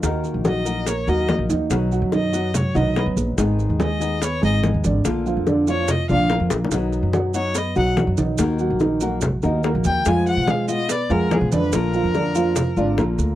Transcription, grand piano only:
\new Staff \with { instrumentName = "Grand piano" } { \time 4/4 \key ees \minor \tempo 4 = 144 <ees ees' ees''>4 <ges ges' ges''>4 <bes bes' bes''>8 <ges ges' ges''>4 <ees ees' ees''>8~ | <ees ees' ees''>8 <fis fis' fis''>8 <dis dis' dis''>8 <fis fis' fis''>4 <dis dis' dis''>8 <b b' b''>4 | <ees ees' ees''>4 <aes aes' aes''>4 <ces' ces'' ces'''>8 <aes aes' aes''>4 <d d''>8~ | <d d''>8 <f f' f''>8 <d d' d''>8 <f f' f''>4 <d d' d''>8 <bes bes' bes''>4 |
<dis dis' dis''>4 <fis fis' fis''>4 <b b' b''>8 <fis fis' fis''>4 <dis dis' dis''>8~ | <dis dis' dis''>8 <ges ges' ges''>8 <ees ees' ees''>8 <ges ges' ges''>4 <ees ees' ees''>8 <bes bes' bes''>4 | <f f' f''>4 <aes aes' aes''>4 <ces' ces'' ces'''>8 <aes aes' aes''>4 <d d' d''>8~ | <d d' d''>8 <f f' f''>8 <d d' d''>8 <f f' f''>4 <d d' d''>8 <bes bes' bes''>4 | }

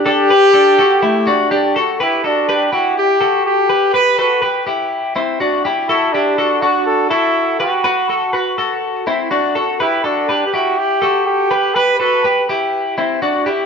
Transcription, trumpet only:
\new Staff \with { instrumentName = "Trumpet" } { \time 4/4 \key d \mixolydian \tempo 4 = 123 g'2. r4 | e'8 d'4 fis'8 g'4 g'4 | b'8 b'4 r2 r8 | e'8 d'4 fis'8 a'8 e'4 fis'8~ |
fis'4. r2 r8 | e'8 d'8.~ d'32 g'32 fis'8 g'4 g'4 | b'8 b'4 r2 r8 | }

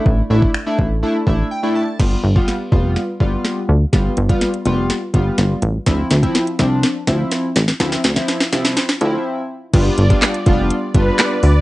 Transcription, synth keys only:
\new Staff \with { instrumentName = "Synth keys" } { \time 4/4 \key g \mixolydian \tempo 4 = 124 << { r2 r8 e''8 g''8 a''8 | r1 | r1 | r1 |
r1 | r1 | } \\ { <a d' e'>16 r16 <a d' e'>8 r16 <a d' e'>8 r16 <a d' e'>16 r16 <a d' e'>8 r16 <a d' e'>8 r16 | <g b f'>8 r16 <g b f'>8 r16 <g b f'>8 r8 <g b f'>8. r8. | <g b f'>8 r16 <g b f'>8 r16 <g b f'>8 r8 <g b f'>8. r8. | <f c' e'>8 r16 <f c' e'>8 r16 <f c' d'>8 r8 <f c' e'>8. r8. |
<f c' e'>8 r16 <f c' e'>8 r16 <f c' e'>8 r8 <f c' e'>8. r8. | <g b d' f'>8 r16 <g b d' f'>8 r16 <g b d' f'>8 r8 <g b d' f'>8. r8. | } >> }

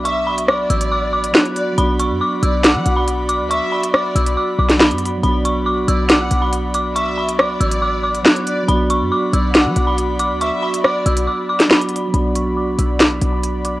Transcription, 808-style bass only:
\new Staff \with { instrumentName = "808-style bass" } { \clef bass \time 4/4 \key b \minor \tempo 4 = 139 b,,4. a,,4. r4 | b,,8. fis,16 r8 b,,8. fis16 b,,4~ b,,16 d,16~ | d,16 r4 r16 b,,8 r8 b,,8. fis,8. | b,,4. b,,4 b,,4.~ |
b,,4. a,,4. r4 | b,,8. fis,16 r8 b,,8. fis16 b,,4~ b,,16 d,16~ | d,16 r4 r16 b,,8 r2 | b,,4. b,,4 b,,4. | }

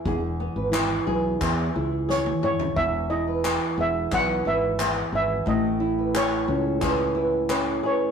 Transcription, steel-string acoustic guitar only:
\new Staff \with { instrumentName = "Steel-string acoustic guitar" } { \time 4/4 \key e \major \tempo 4 = 89 gis'16 r8 b'16 cis''8 b'16 r8. gis'8 r4 | r16 cis''16 r16 b'16 r8 gis'8 b'8 b'16 r16 gis'16 r16 b'16 r16 | r16 cis''16 r16 b'16 r8 a'8 b'8 b'16 r16 a'16 r16 b'16 r16 | }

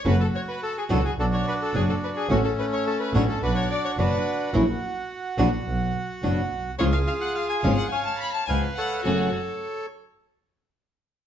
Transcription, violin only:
\new Staff \with { instrumentName = "Violin" } { \time 4/4 \key fis \minor \tempo 4 = 107 b'16 a'16 cis''16 b'16 a'16 gis'16 a'16 gis'16 a'16 cis''16 b'16 a'16 gis'16 a'16 b'16 gis'16 | fis'16 a'16 b'16 cis''16 a'16 b'16 cis''16 a'16 b'16 cis''16 d''16 cis''16 b'4 | r1 | cis''16 eis''16 eis''16 fis''16 eis''16 gis''16 eis''16 fis''16 gis''16 a''16 b''16 a''16 gis''8 fis''8 |
fis'8 r2. r8 | }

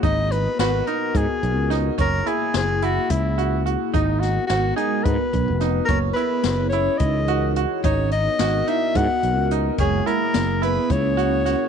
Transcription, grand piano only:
\new Staff \with { instrumentName = "Grand piano" } { \time 7/8 \key gis \minor \tempo 4 = 108 dis'4 fis'8 dis'4 r8 dis'8 | cis'8 e'4 e'4 fis'8 fis'8 | dis'4 fis'8 dis'4 r8 dis'8 | cis'8 e'4 e'4 fis'8 fis'8 |
dis'4 fis'8 dis'4 r8 dis'8 | cis'8 e'4 e'4 fis'8 fis'8 | }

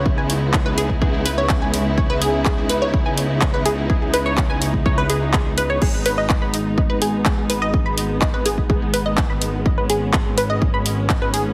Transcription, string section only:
\new Staff \with { instrumentName = "String section" } { \time 4/4 \key gis \minor \tempo 4 = 125 << { <cis b dis' e'>1~ | <cis b dis' e'>1~ | <cis b dis' e'>1 | b1~ |
b1 | cis'1 | } \\ { gis1~ | gis1~ | gis1 | gis1~ |
gis1~ | gis1 | } >> }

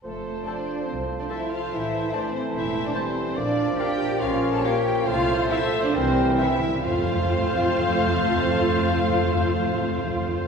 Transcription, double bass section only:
\new Staff \with { instrumentName = "Double bass section" } { \clef bass \time 4/4 \key f \major \tempo 4 = 140 f,,4 r4 c,4 r4 | a,,4 r4 e,,4 r4 | bes,,4 r4 bes,,4 r4 | c,4 r4 c,4 r4 |
f,1~ | f,1 | }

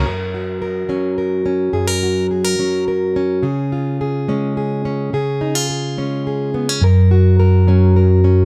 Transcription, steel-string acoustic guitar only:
\new Staff \with { instrumentName = "Steel-string acoustic guitar" } { \time 6/8 \key fis \major \tempo 4. = 71 << { ais'8 fis'8 ais'8 cis'8 ais'8 cis'8 | gis'16 ais'16 fis'8 gis'16 ais'16 cis'8 ais'8 cis'8 | gis'8 eis'8 gis'8 cis'8 gis'8 cis'8 | gis'8 dis'16 eis'16 gis'8 cis'8 gis'8 b16 cis'16 |
ais'8 fis'8 ais'8 cis'8 ais'8 cis'8 | } \\ { fis,4. fis4. | fis,4. fis4. | cis4. gis4. | cis4. gis4. |
fis,4. fis4. | } >> }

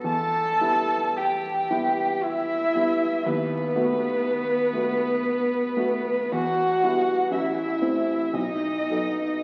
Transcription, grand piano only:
\new Staff \with { instrumentName = "Grand piano" } { \time 3/4 \key e \minor \tempo 4 = 58 e,8 <g b e'>4 <g b e'>4 <g b e'>8 | dis,8 <a b fis'>4 <a b fis'>4 <a b fis'>8 | e,8 <g b e'>8 a,,8 <a c' e'>8 b,,8 <fis b a'>8 | }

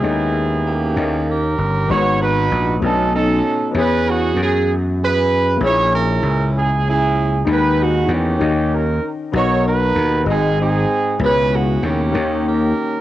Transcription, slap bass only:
\new Staff \with { instrumentName = "Slap bass" } { \clef bass \time 6/8 \key gis \minor \tempo 4. = 65 dis,4. dis,4 g,,8 | gis,,4 ais,,8 b,,4 r8 | e,4 fis,2 | ais,,4 cis,2 |
dis,4 e,8 dis,4 r8 | b,,4 dis,8 gis,,4 r8 | cis,4 dis,8 dis,4 r8 | }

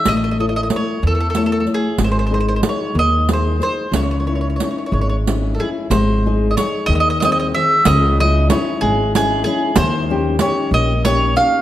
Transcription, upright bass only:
\new Staff \with { instrumentName = "Upright bass" } { \clef bass \time 6/8 \key cis \minor \tempo 4. = 62 a,,4. e,4. | gis,,4. dis,4. | cis,4. gis,,4. | gis,,4. dis,4. |
cis,4. gis,,4. | dis,4. ais,,4. | }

